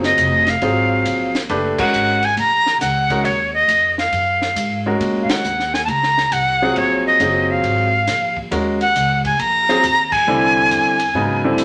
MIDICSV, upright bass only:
0, 0, Header, 1, 3, 480
1, 0, Start_track
1, 0, Tempo, 438596
1, 1639, Time_signature, 4, 2, 24, 8
1, 12744, End_track
2, 0, Start_track
2, 0, Title_t, "Upright bass"
2, 0, Program_c, 0, 32
2, 0, Note_on_c, 0, 30, 89
2, 180, Note_off_c, 0, 30, 0
2, 191, Note_on_c, 0, 29, 93
2, 661, Note_off_c, 0, 29, 0
2, 675, Note_on_c, 0, 32, 86
2, 1143, Note_off_c, 0, 32, 0
2, 1153, Note_on_c, 0, 34, 89
2, 1622, Note_off_c, 0, 34, 0
2, 1635, Note_on_c, 0, 30, 84
2, 1932, Note_off_c, 0, 30, 0
2, 2112, Note_on_c, 0, 32, 78
2, 2581, Note_off_c, 0, 32, 0
2, 2590, Note_on_c, 0, 34, 84
2, 3060, Note_off_c, 0, 34, 0
2, 3078, Note_on_c, 0, 37, 83
2, 3545, Note_off_c, 0, 37, 0
2, 3551, Note_on_c, 0, 39, 80
2, 4021, Note_off_c, 0, 39, 0
2, 4028, Note_on_c, 0, 41, 85
2, 4500, Note_off_c, 0, 41, 0
2, 4507, Note_on_c, 0, 42, 86
2, 4975, Note_off_c, 0, 42, 0
2, 4982, Note_on_c, 0, 44, 85
2, 5457, Note_off_c, 0, 44, 0
2, 5469, Note_on_c, 0, 46, 85
2, 5770, Note_off_c, 0, 46, 0
2, 5950, Note_on_c, 0, 39, 88
2, 6421, Note_off_c, 0, 39, 0
2, 6429, Note_on_c, 0, 37, 85
2, 6901, Note_off_c, 0, 37, 0
2, 6911, Note_on_c, 0, 36, 86
2, 7382, Note_off_c, 0, 36, 0
2, 7403, Note_on_c, 0, 34, 86
2, 7868, Note_off_c, 0, 34, 0
2, 7878, Note_on_c, 0, 30, 93
2, 8346, Note_off_c, 0, 30, 0
2, 8355, Note_on_c, 0, 32, 84
2, 8824, Note_off_c, 0, 32, 0
2, 8835, Note_on_c, 0, 34, 93
2, 9304, Note_off_c, 0, 34, 0
2, 9315, Note_on_c, 0, 39, 92
2, 9784, Note_off_c, 0, 39, 0
2, 9800, Note_on_c, 0, 37, 95
2, 10267, Note_off_c, 0, 37, 0
2, 10276, Note_on_c, 0, 34, 89
2, 10745, Note_off_c, 0, 34, 0
2, 10755, Note_on_c, 0, 39, 89
2, 11224, Note_off_c, 0, 39, 0
2, 11239, Note_on_c, 0, 36, 85
2, 11706, Note_off_c, 0, 36, 0
2, 11716, Note_on_c, 0, 40, 78
2, 12184, Note_off_c, 0, 40, 0
2, 12190, Note_on_c, 0, 44, 90
2, 12650, Note_off_c, 0, 44, 0
2, 12657, Note_on_c, 0, 43, 81
2, 12744, Note_off_c, 0, 43, 0
2, 12744, End_track
3, 0, Start_track
3, 0, Title_t, "Muted upright bass strokes"
3, 1951, Note_on_c, 9, 29, 37
3, 2061, Note_off_c, 9, 29, 0
3, 5786, Note_on_c, 9, 29, 37
3, 5896, Note_off_c, 9, 29, 0
3, 12744, End_track
0, 0, End_of_file